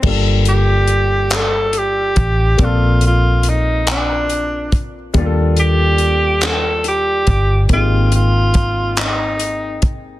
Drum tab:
CC |x-----|------|------|------|
HH |-xxxxx|xxxxxx|xxxxxx|xxxxxx|
CP |---x--|---x--|---x--|---x--|
BD |o----o|o----o|o----o|o-o--o|